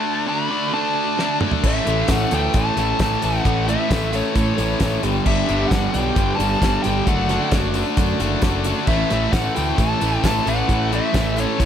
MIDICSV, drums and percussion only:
0, 0, Header, 1, 2, 480
1, 0, Start_track
1, 0, Tempo, 452489
1, 1741, Time_signature, 4, 2, 24, 8
1, 12361, End_track
2, 0, Start_track
2, 0, Title_t, "Drums"
2, 1260, Note_on_c, 9, 38, 51
2, 1366, Note_off_c, 9, 38, 0
2, 1492, Note_on_c, 9, 45, 84
2, 1598, Note_off_c, 9, 45, 0
2, 1607, Note_on_c, 9, 43, 77
2, 1713, Note_off_c, 9, 43, 0
2, 1736, Note_on_c, 9, 36, 107
2, 1736, Note_on_c, 9, 49, 109
2, 1745, Note_on_c, 9, 54, 23
2, 1842, Note_off_c, 9, 36, 0
2, 1842, Note_off_c, 9, 49, 0
2, 1851, Note_off_c, 9, 54, 0
2, 1976, Note_on_c, 9, 54, 25
2, 1981, Note_on_c, 9, 42, 65
2, 2082, Note_off_c, 9, 54, 0
2, 2087, Note_off_c, 9, 42, 0
2, 2205, Note_on_c, 9, 42, 91
2, 2212, Note_on_c, 9, 38, 101
2, 2215, Note_on_c, 9, 36, 104
2, 2220, Note_on_c, 9, 54, 76
2, 2311, Note_off_c, 9, 42, 0
2, 2318, Note_off_c, 9, 38, 0
2, 2321, Note_off_c, 9, 36, 0
2, 2326, Note_off_c, 9, 54, 0
2, 2451, Note_on_c, 9, 42, 67
2, 2465, Note_on_c, 9, 54, 73
2, 2557, Note_off_c, 9, 42, 0
2, 2571, Note_off_c, 9, 54, 0
2, 2692, Note_on_c, 9, 42, 92
2, 2698, Note_on_c, 9, 36, 118
2, 2707, Note_on_c, 9, 54, 60
2, 2798, Note_off_c, 9, 42, 0
2, 2804, Note_off_c, 9, 36, 0
2, 2813, Note_off_c, 9, 54, 0
2, 2939, Note_on_c, 9, 42, 71
2, 2941, Note_on_c, 9, 54, 62
2, 3045, Note_off_c, 9, 42, 0
2, 3047, Note_off_c, 9, 54, 0
2, 3176, Note_on_c, 9, 42, 86
2, 3180, Note_on_c, 9, 36, 99
2, 3181, Note_on_c, 9, 54, 86
2, 3184, Note_on_c, 9, 38, 101
2, 3282, Note_off_c, 9, 42, 0
2, 3286, Note_off_c, 9, 36, 0
2, 3287, Note_off_c, 9, 54, 0
2, 3290, Note_off_c, 9, 38, 0
2, 3418, Note_on_c, 9, 42, 68
2, 3426, Note_on_c, 9, 54, 60
2, 3524, Note_off_c, 9, 42, 0
2, 3532, Note_off_c, 9, 54, 0
2, 3663, Note_on_c, 9, 36, 105
2, 3663, Note_on_c, 9, 42, 92
2, 3663, Note_on_c, 9, 54, 22
2, 3769, Note_off_c, 9, 36, 0
2, 3769, Note_off_c, 9, 42, 0
2, 3769, Note_off_c, 9, 54, 0
2, 3898, Note_on_c, 9, 54, 22
2, 3911, Note_on_c, 9, 42, 81
2, 4005, Note_off_c, 9, 54, 0
2, 4017, Note_off_c, 9, 42, 0
2, 4144, Note_on_c, 9, 36, 107
2, 4145, Note_on_c, 9, 54, 75
2, 4147, Note_on_c, 9, 42, 94
2, 4155, Note_on_c, 9, 38, 110
2, 4250, Note_off_c, 9, 36, 0
2, 4251, Note_off_c, 9, 54, 0
2, 4253, Note_off_c, 9, 42, 0
2, 4261, Note_off_c, 9, 38, 0
2, 4381, Note_on_c, 9, 42, 71
2, 4387, Note_on_c, 9, 54, 67
2, 4487, Note_off_c, 9, 42, 0
2, 4493, Note_off_c, 9, 54, 0
2, 4620, Note_on_c, 9, 42, 114
2, 4621, Note_on_c, 9, 36, 126
2, 4623, Note_on_c, 9, 54, 63
2, 4726, Note_off_c, 9, 42, 0
2, 4727, Note_off_c, 9, 36, 0
2, 4730, Note_off_c, 9, 54, 0
2, 4859, Note_on_c, 9, 42, 72
2, 4863, Note_on_c, 9, 54, 70
2, 4965, Note_off_c, 9, 42, 0
2, 4969, Note_off_c, 9, 54, 0
2, 5090, Note_on_c, 9, 42, 91
2, 5097, Note_on_c, 9, 36, 95
2, 5097, Note_on_c, 9, 38, 104
2, 5104, Note_on_c, 9, 54, 95
2, 5196, Note_off_c, 9, 42, 0
2, 5203, Note_off_c, 9, 36, 0
2, 5203, Note_off_c, 9, 38, 0
2, 5210, Note_off_c, 9, 54, 0
2, 5338, Note_on_c, 9, 42, 66
2, 5340, Note_on_c, 9, 54, 69
2, 5444, Note_off_c, 9, 42, 0
2, 5446, Note_off_c, 9, 54, 0
2, 5579, Note_on_c, 9, 36, 102
2, 5579, Note_on_c, 9, 49, 92
2, 5579, Note_on_c, 9, 54, 27
2, 5685, Note_off_c, 9, 36, 0
2, 5685, Note_off_c, 9, 49, 0
2, 5685, Note_off_c, 9, 54, 0
2, 5821, Note_on_c, 9, 42, 70
2, 5827, Note_on_c, 9, 54, 27
2, 5927, Note_off_c, 9, 42, 0
2, 5933, Note_off_c, 9, 54, 0
2, 6060, Note_on_c, 9, 36, 109
2, 6062, Note_on_c, 9, 42, 90
2, 6064, Note_on_c, 9, 54, 81
2, 6069, Note_on_c, 9, 38, 107
2, 6166, Note_off_c, 9, 36, 0
2, 6168, Note_off_c, 9, 42, 0
2, 6170, Note_off_c, 9, 54, 0
2, 6176, Note_off_c, 9, 38, 0
2, 6301, Note_on_c, 9, 42, 69
2, 6312, Note_on_c, 9, 54, 74
2, 6407, Note_off_c, 9, 42, 0
2, 6418, Note_off_c, 9, 54, 0
2, 6538, Note_on_c, 9, 36, 117
2, 6538, Note_on_c, 9, 42, 107
2, 6546, Note_on_c, 9, 54, 60
2, 6644, Note_off_c, 9, 42, 0
2, 6645, Note_off_c, 9, 36, 0
2, 6652, Note_off_c, 9, 54, 0
2, 6786, Note_on_c, 9, 54, 68
2, 6788, Note_on_c, 9, 42, 64
2, 6892, Note_off_c, 9, 54, 0
2, 6894, Note_off_c, 9, 42, 0
2, 7020, Note_on_c, 9, 36, 106
2, 7026, Note_on_c, 9, 42, 87
2, 7026, Note_on_c, 9, 54, 91
2, 7034, Note_on_c, 9, 38, 98
2, 7126, Note_off_c, 9, 36, 0
2, 7132, Note_off_c, 9, 42, 0
2, 7132, Note_off_c, 9, 54, 0
2, 7140, Note_off_c, 9, 38, 0
2, 7255, Note_on_c, 9, 42, 76
2, 7261, Note_on_c, 9, 54, 62
2, 7361, Note_off_c, 9, 42, 0
2, 7367, Note_off_c, 9, 54, 0
2, 7499, Note_on_c, 9, 36, 101
2, 7499, Note_on_c, 9, 42, 89
2, 7507, Note_on_c, 9, 54, 22
2, 7605, Note_off_c, 9, 36, 0
2, 7605, Note_off_c, 9, 42, 0
2, 7613, Note_off_c, 9, 54, 0
2, 7736, Note_on_c, 9, 42, 72
2, 7743, Note_on_c, 9, 38, 34
2, 7744, Note_on_c, 9, 54, 24
2, 7842, Note_off_c, 9, 42, 0
2, 7849, Note_off_c, 9, 38, 0
2, 7850, Note_off_c, 9, 54, 0
2, 7972, Note_on_c, 9, 42, 97
2, 7977, Note_on_c, 9, 36, 113
2, 7980, Note_on_c, 9, 38, 113
2, 7980, Note_on_c, 9, 54, 79
2, 8078, Note_off_c, 9, 42, 0
2, 8084, Note_off_c, 9, 36, 0
2, 8086, Note_off_c, 9, 38, 0
2, 8087, Note_off_c, 9, 54, 0
2, 8209, Note_on_c, 9, 42, 70
2, 8222, Note_on_c, 9, 54, 72
2, 8315, Note_off_c, 9, 42, 0
2, 8328, Note_off_c, 9, 54, 0
2, 8455, Note_on_c, 9, 42, 112
2, 8458, Note_on_c, 9, 36, 117
2, 8461, Note_on_c, 9, 54, 68
2, 8561, Note_off_c, 9, 42, 0
2, 8564, Note_off_c, 9, 36, 0
2, 8567, Note_off_c, 9, 54, 0
2, 8693, Note_on_c, 9, 54, 66
2, 8700, Note_on_c, 9, 42, 73
2, 8799, Note_off_c, 9, 54, 0
2, 8806, Note_off_c, 9, 42, 0
2, 8928, Note_on_c, 9, 54, 99
2, 8932, Note_on_c, 9, 42, 92
2, 8936, Note_on_c, 9, 36, 107
2, 8939, Note_on_c, 9, 38, 91
2, 9034, Note_off_c, 9, 54, 0
2, 9038, Note_off_c, 9, 42, 0
2, 9042, Note_off_c, 9, 36, 0
2, 9045, Note_off_c, 9, 38, 0
2, 9169, Note_on_c, 9, 42, 70
2, 9176, Note_on_c, 9, 54, 63
2, 9275, Note_off_c, 9, 42, 0
2, 9282, Note_off_c, 9, 54, 0
2, 9410, Note_on_c, 9, 57, 95
2, 9414, Note_on_c, 9, 36, 111
2, 9420, Note_on_c, 9, 54, 26
2, 9516, Note_off_c, 9, 57, 0
2, 9520, Note_off_c, 9, 36, 0
2, 9526, Note_off_c, 9, 54, 0
2, 9657, Note_on_c, 9, 42, 72
2, 9660, Note_on_c, 9, 54, 24
2, 9664, Note_on_c, 9, 38, 34
2, 9763, Note_off_c, 9, 42, 0
2, 9767, Note_off_c, 9, 54, 0
2, 9770, Note_off_c, 9, 38, 0
2, 9896, Note_on_c, 9, 36, 111
2, 9898, Note_on_c, 9, 42, 89
2, 9899, Note_on_c, 9, 54, 89
2, 9906, Note_on_c, 9, 38, 104
2, 10002, Note_off_c, 9, 36, 0
2, 10005, Note_off_c, 9, 42, 0
2, 10005, Note_off_c, 9, 54, 0
2, 10012, Note_off_c, 9, 38, 0
2, 10139, Note_on_c, 9, 54, 74
2, 10147, Note_on_c, 9, 42, 61
2, 10245, Note_off_c, 9, 54, 0
2, 10253, Note_off_c, 9, 42, 0
2, 10378, Note_on_c, 9, 36, 118
2, 10378, Note_on_c, 9, 42, 105
2, 10380, Note_on_c, 9, 54, 69
2, 10484, Note_off_c, 9, 36, 0
2, 10484, Note_off_c, 9, 42, 0
2, 10486, Note_off_c, 9, 54, 0
2, 10618, Note_on_c, 9, 54, 72
2, 10624, Note_on_c, 9, 42, 66
2, 10724, Note_off_c, 9, 54, 0
2, 10730, Note_off_c, 9, 42, 0
2, 10860, Note_on_c, 9, 36, 98
2, 10863, Note_on_c, 9, 54, 98
2, 10867, Note_on_c, 9, 42, 79
2, 10875, Note_on_c, 9, 38, 111
2, 10966, Note_off_c, 9, 36, 0
2, 10969, Note_off_c, 9, 54, 0
2, 10973, Note_off_c, 9, 42, 0
2, 10981, Note_off_c, 9, 38, 0
2, 11105, Note_on_c, 9, 54, 73
2, 11108, Note_on_c, 9, 42, 67
2, 11211, Note_off_c, 9, 54, 0
2, 11214, Note_off_c, 9, 42, 0
2, 11341, Note_on_c, 9, 36, 106
2, 11344, Note_on_c, 9, 54, 27
2, 11346, Note_on_c, 9, 42, 88
2, 11448, Note_off_c, 9, 36, 0
2, 11450, Note_off_c, 9, 54, 0
2, 11452, Note_off_c, 9, 42, 0
2, 11590, Note_on_c, 9, 42, 78
2, 11590, Note_on_c, 9, 54, 28
2, 11696, Note_off_c, 9, 42, 0
2, 11696, Note_off_c, 9, 54, 0
2, 11819, Note_on_c, 9, 54, 92
2, 11821, Note_on_c, 9, 36, 114
2, 11823, Note_on_c, 9, 42, 94
2, 11831, Note_on_c, 9, 38, 101
2, 11925, Note_off_c, 9, 54, 0
2, 11928, Note_off_c, 9, 36, 0
2, 11929, Note_off_c, 9, 42, 0
2, 11937, Note_off_c, 9, 38, 0
2, 12055, Note_on_c, 9, 54, 70
2, 12074, Note_on_c, 9, 42, 67
2, 12161, Note_off_c, 9, 54, 0
2, 12180, Note_off_c, 9, 42, 0
2, 12304, Note_on_c, 9, 36, 115
2, 12305, Note_on_c, 9, 42, 102
2, 12312, Note_on_c, 9, 54, 68
2, 12361, Note_off_c, 9, 36, 0
2, 12361, Note_off_c, 9, 42, 0
2, 12361, Note_off_c, 9, 54, 0
2, 12361, End_track
0, 0, End_of_file